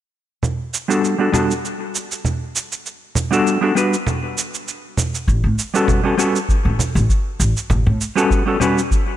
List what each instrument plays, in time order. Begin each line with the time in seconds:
0.43 low conga, cabasa
0.74 cabasa
0.88 hollow-body jazz guitar G3 B3 D4 F#4 A4, cabasa
1.04 cabasa
1.18 hollow-body jazz guitar G3 B3 D4 F#4 A4
1.32 hollow-body jazz guitar G3 B3 D4 F#4 A4, low conga, cabasa
1.51 cabasa
1.65 cabasa
1.95 cabasa
2.12 cabasa
2.25 low conga, cabasa
2.56 cabasa
2.72 cabasa
2.86 cabasa
3.15 low conga, cabasa
3.31 hollow-body jazz guitar G3 B3 D4 F#4 A4, cabasa
3.47 cabasa
3.61 hollow-body jazz guitar G3 B3 D4 F#4 A4
3.75 hollow-body jazz guitar G3 B3 D4 F#4 B4, cabasa
3.94 cabasa
4.07 low conga, cabasa
4.38 cabasa
4.54 cabasa
4.68 cabasa
4.97 low conga, cabasa
5.15 cabasa
5.28 upright bass A1, kick, cabasa
5.44 upright bass A2
5.59 cabasa
5.74 hollow-body jazz guitar G3 B3 C#4 F#4 A4, cabasa
5.88 kick, low conga, cabasa
6.03 hollow-body jazz guitar G3 B3 C#4 F#4 A4
6.17 hollow-body jazz guitar G3 B3 C#4 F#4 A4, cabasa
6.36 cabasa
6.49 kick, cabasa
6.65 upright bass A1
6.79 low conga, cabasa
6.95 upright bass A1, cabasa
7.09 kick, cabasa
7.40 upright bass A1, cabasa
7.57 cabasa
7.70 upright bass A1, kick, low conga, cabasa
7.86 upright bass A2
8.01 cabasa
8.15 hollow-body jazz guitar G3 B3 C#4 F#4 A4, cabasa
8.31 kick, cabasa
8.46 hollow-body jazz guitar G3 B3 C#4 F#4 A4
8.60 hollow-body jazz guitar G3 B3 C#4 F#4 B4, low conga, cabasa
8.78 cabasa
8.91 kick, cabasa